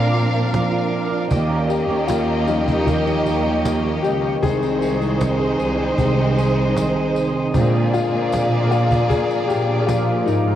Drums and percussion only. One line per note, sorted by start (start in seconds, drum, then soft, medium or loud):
0.14 cajon slap soft
0.54 cajon slap loud
0.92 cajon slap soft
1.31 cajon bass loud
1.31 tambourine medium
1.70 cajon slap soft
1.70 tambourine soft
2.08 cajon slap loud
2.08 tambourine medium
2.48 tambourine medium
2.68 cajon bass medium
2.68 tambourine soft
2.87 cajon bass loud
2.87 tambourine medium
3.07 tambourine soft
3.26 cajon slap soft
3.26 tambourine medium
3.65 cajon slap loud
3.65 tambourine loud
4.04 cajon slap soft
4.04 tambourine medium
4.43 cajon bass loud
4.43 tambourine medium
4.63 tambourine soft
4.82 cajon slap soft
4.82 tambourine medium
5.02 tambourine soft
5.21 cajon slap loud
5.21 tambourine medium
5.60 cajon slap soft
5.60 tambourine medium
5.98 cajon bass loud
5.98 tambourine medium
6.38 cajon slap soft
6.38 tambourine medium
6.77 cajon slap loud
6.77 tambourine loud
7.15 cajon slap soft
7.15 tambourine medium
7.54 cajon bass loud
7.54 tambourine medium
7.93 cajon slap soft
7.93 tambourine medium
8.32 cajon slap loud
8.32 tambourine medium
8.71 tambourine medium
8.91 cajon bass medium
8.91 tambourine soft
9.10 cajon bass loud
9.10 tambourine medium
9.31 tambourine soft
9.49 cajon slap soft
9.49 tambourine soft
9.89 cajon slap loud
9.89 tambourine loud
10.27 cajon slap soft
10.27 tambourine soft